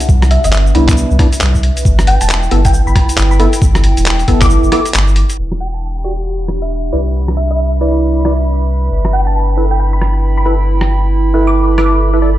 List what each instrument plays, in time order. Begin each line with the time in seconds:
Already playing: ambient pad D4 G4 F#5
0.00 ambient pad B4, closed hi-hat, shaker
0.09 sub bass C2, kick, shaker
0.22 cross-stick, closed hi-hat, shaker
0.28 ambient pad E5, synth pluck E5, closed hi-hat
0.44 sub bass G1, synth pluck E5, closed hi-hat, shaker
0.53 clap, shaker
0.66 shaker
0.75 sub bass C2, synth stab B3 D4 E4, closed hi-hat
0.88 kick, clap, closed hi-hat, shaker
0.97 shaker
1.11 sub bass C2, shaker
1.19 synth stab B3 D4 E4, kick, cross-stick, closed hi-hat
1.33 closed hi-hat, shaker
1.41 sub bass C2, clap, closed hi-hat, shaker
1.55 kick, shaker
1.63 closed hi-hat
1.77 closed hi-hat, shaker
1.85 sub bass G1, ambient pad E4, kick, shaker
1.99 cross-stick, closed hi-hat, shaker
2.07 synth pluck G5, closed hi-hat
2.21 sub bass E1, synth pluck A5, closed hi-hat, shaker
2.29 clap, shaker
2.43 shaker
2.50 sub bass G1, synth stab B3 E4 A4, ambient pad G5, closed hi-hat
2.65 synth pluck G5, kick, closed hi-hat, shaker
2.73 synth pluck G5, shaker
2.87 sub bass G1, synth pluck B5, shaker
2.96 kick, cross-stick, closed hi-hat
3.09 closed hi-hat, shaker
3.18 sub bass G1, clap, closed hi-hat, shaker
3.31 synth pluck B5, shaker
3.40 synth stab B3 E4 A4, closed hi-hat
3.53 closed hi-hat, shaker
3.62 sub bass G1, kick, shaker
3.75 cross-stick, closed hi-hat, shaker
3.84 closed hi-hat
3.97 sub bass E1, closed hi-hat, shaker
4.06 clap, shaker
4.19 closed hi-hat, shaker
4.28 sub bass G1, synth stab B3 E4 A4, kick, closed hi-hat
4.41 synth pluck D6, kick, clap, closed hi-hat, shaker
4.50 shaker
4.63 sub bass G1, shaker
4.72 synth stab B3 E4 A4, synth pluck D6, cross-stick, closed hi-hat
4.85 closed hi-hat, shaker
4.94 sub bass G1, clap, closed hi-hat, shaker
5.08 shaker
5.16 closed hi-hat
5.30 closed hi-hat, shaker
5.38 sub bass E1, ambient pad D4, analog synth pad B5
5.52 cross-stick
5.60 ambient pad G4, synth pluck G5
5.66 ambient pad F#5
5.74 synth pluck A5
6.04 synth stab F#4 G4 D5
6.48 cross-stick
6.62 synth pluck E5
6.93 sub bass C2, synth stab E4 B4 D5
7.14 ambient pad B4
7.28 ambient pad E5, cross-stick
7.37 synth pluck E5
7.51 synth pluck E5
7.81 synth stab E4 B4 D5
8.25 synth stab E4 B4 D5, cross-stick
8.91 sub bass G1, ambient pad E4
9.05 cross-stick
9.13 synth pluck G5
9.27 synth pluck A5
9.33 ambient pad G5
9.57 synth stab E4 A4 B4
9.71 synth pluck G5
9.80 synth pluck G5
9.93 synth pluck B5
10.02 cross-stick
10.37 synth pluck B5
10.46 synth stab E4 A4 B4
10.81 cross-stick
11.34 synth stab E4 A4 B4
11.47 synth pluck D6
11.78 synth stab E4 A4 B4, synth pluck D6, cross-stick
12.13 synth stab E4 A4 B4
12.22 synth stab E4 A4 D5